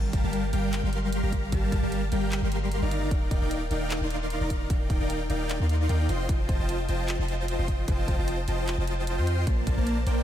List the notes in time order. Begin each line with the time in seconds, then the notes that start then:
Already playing: G1 G3 G4 A#4 F5 A5
0.13 kick, closed hi-hat
0.24 G1 G3 G4 A#4 F5 A5
0.33 closed hi-hat
0.53 G1 G3 G4 A#4 F5 G5, closed hi-hat
0.73 clap, closed hi-hat
0.83 G1 G3 G4 A#4 F5 C6
0.93 closed hi-hat
1.12 closed hi-hat
1.23 G1 G3 G4 A#4 F5 A#5
1.32 kick, closed hi-hat
1.52 G1 G3 G4 A#4 F5 A5, kick, closed hi-hat
1.72 kick, closed hi-hat
1.83 G1 G3 G4 A#4 F5 A5
1.92 closed hi-hat
2.12 G1 G3 G4 A#4 F5 G5, closed hi-hat
2.32 clap, closed hi-hat
2.42 G1 G3 G4 A#4 F5 C6
2.52 closed hi-hat
2.71 closed hi-hat
2.82 G1 D#4 A#4 D5 F5 A#5
2.91 closed hi-hat
3.11 D#4 A#4 D5 G5, kick, closed hi-hat
3.31 kick, closed hi-hat
3.41 D#1 D#4 A#4 D5 F5 G5
3.51 closed hi-hat
3.71 D#1 D#4 A#4 D5 F5 G5, closed hi-hat
3.91 clap, closed hi-hat
4.01 D#1 D#4 A#4 D5 F5 C6
4.10 closed hi-hat
4.30 closed hi-hat
4.41 D#1 D#4 A#4 D5 F5 A#5
4.50 kick, closed hi-hat
4.70 D#1 D#4 A#4 D5 F5 G5, kick, closed hi-hat
4.90 kick, closed hi-hat
5.00 D#1 D#4 A#4 D5 F5 G5
5.10 closed hi-hat
5.30 D#1 D#4 A#4 D5 F5 G5, closed hi-hat
5.50 clap, closed hi-hat
5.60 D#2 D#4 A#4 D5 F5 C6
5.69 closed hi-hat
5.89 D#2 D#4 A#4 D5 F5 G5, closed hi-hat
6.09 F1 F4 C5 D#5 G5 C6, closed hi-hat
6.29 F1 F4 C5 D#5 G5 A5, kick, closed hi-hat
6.49 kick, closed hi-hat
6.59 F1 F4 C5 D#5 G5 A5
6.69 closed hi-hat
6.89 F1 F4 C5 D#5 G5 A5, closed hi-hat
7.08 clap, closed hi-hat
7.19 F1 F4 C5 D#5 G5 A5
7.28 closed hi-hat
7.48 closed hi-hat
7.59 F1 F4 C5 D#5 G5 C6
7.68 kick, closed hi-hat
7.88 F1 F4 C5 D#5 G5 A5, kick, closed hi-hat
8.08 kick, closed hi-hat
8.18 F1 F4 C5 D#5 G5 A5
8.28 closed hi-hat
8.48 F1 F4 C5 D#5 G5 A5, closed hi-hat
8.68 clap, closed hi-hat
8.78 F1 F4 C5 D#5 G5 A5
8.87 closed hi-hat
9.07 closed hi-hat
9.18 F2 F4 C5 D#5 G5 C6
9.27 closed hi-hat
9.47 A#1 A#3 A#4 C5 D5, kick, closed hi-hat
9.67 kick, closed hi-hat
9.77 A#1 A#3 A#4 C5 D5 A5
9.87 closed hi-hat
10.06 A#1 A#3 A#4 C5 D5 G5, closed hi-hat